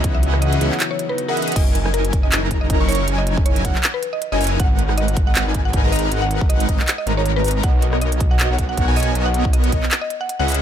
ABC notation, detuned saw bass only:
X:1
M:4/4
L:1/16
Q:"Swing 16ths" 1/4=158
K:B
V:1 name="Detuned saw bass" clef=bass
C,,6 C,, z8 z | F,,,8- F,,, F,,,4 F,,,3 | F,,,6 F,,, z6 F,,,3 | G,,,8- G,,, G,,,4 G,,,3 |
G,,,6 z4 G,,,6 | B,,,8- B,,, B,,,4 B,,,3 | B,,,6 B,,, z6 C,,3 |]